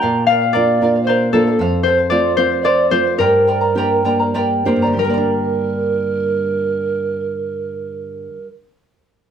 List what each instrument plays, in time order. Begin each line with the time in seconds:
Already playing: harp D5 G5 A5, pan flute A#5
0.02 nylon-string guitar A#2, charango A#4 D5 F5
0.27 charango A#4 D5, harp F5, pan flute F5
0.31 charango F5
0.42 charango D5 F5
0.53 nylon-string guitar A#3 D4 F4, charango A#4 D5 F5, harp D5, pan flute D5
0.81 nylon-string guitar A#3 D4 F4, charango A#4 D5 F5
0.95 charango D5 F5
1.03 pan flute C5, harp C5
1.08 charango A#4 D5 F5
1.32 nylon-string guitar A#3 D4 F4, pan flute A4, harp A4, charango A#4 D5 F5
1.47 charango D5 F5
1.59 nylon-string guitar F2, charango A4 C5 F5
1.83 charango A4 C5, harp C5, pan flute C5
1.88 charango F5
1.98 charango C5 F5
2.10 nylon-string guitar A3 C4 F4, charango A4 C5 F5, harp D5, pan flute D5
2.36 nylon-string guitar A3 C4 F4, charango A4 C5 F5, pan flute C5, harp C5
2.50 charango C5 F5
2.62 charango A4 C5 F5, pan flute D5, harp D5
2.90 nylon-string guitar A3 C4 F4, charango A4 C5 F5, pan flute C5, harp C5
3.05 charango C5 F5
3.17 nylon-string guitar G2, charango G4 A#4 D5 G5 A#5, pan flute A#4, harp A#4
3.47 charango A#4 D5 G5 A#5
3.61 charango A#4 D5 A#5
3.75 nylon-string guitar A#3 D4 G4, charango G4 A#4 D5 G5 A#5
4.04 nylon-string guitar A#3 D4 G4, charango A#4 D5 G5 A#5
4.19 charango A#4 D5 A#5
4.34 charango G4 A#4 D5 G5 A#5, nylon-string guitar D5
4.65 nylon-string guitar A#3 D4 G4 C5, charango A#4 D5 G5 A#5
4.76 nylon-string guitar G2
4.82 charango A#4 D5 A#5
4.87 nylon-string guitar D3
4.93 nylon-string guitar G3, charango G4
4.97 pan flute A#4, harp A#4, charango G5
5.05 nylon-string guitar A#3, charango A#4
5.10 charango D5
5.14 nylon-string guitar D4, charango A#5